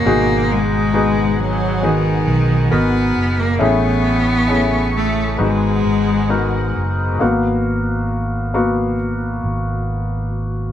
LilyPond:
<<
  \new Staff \with { instrumentName = "String section" } { \time 4/4 \key gis \minor \tempo 4 = 67 <gis' fis'' gis''>1 | <a gis'' cis'''>2 <gis' fis'' gis''>2 | r1 | }
  \new Staff \with { instrumentName = "Felt piano" } { \time 4/4 \key gis \minor <b, dis' fis' gis'>4 <b dis' fis' gis'>4 <b dis' fis' gis'>4 <b dis' fis' ais'>4 | <a cis' e' gis'>4 <a cis' e' gis'>4 <b dis' fis' gis'>4 <b dis' fis' ais'>4 | r1 | }
  \new Staff \with { instrumentName = "Felt piano" } { \time 4/4 \key gis \minor gis,4. r2 r8 | a,4. r8 gis,4. r8 | <ais b fis'>4. <ais b fis'>8 r2 | }
  \new Staff \with { instrumentName = "Cello" } { \time 4/4 \key gis \minor ais8 gis4 fis8 dis4 b8. ais16 | b4. a8 gis4. r8 | r1 | }
  \new Staff \with { instrumentName = "Fingered electric bass" } { \clef bass \time 4/4 \key gis \minor gis,,2~ gis,,8 b,,8 gis,,8 fis,,8 | a,,2 gis,,8 gis,,4 fis,,8 | gis,,2~ gis,,8 gis,,4. | }
>>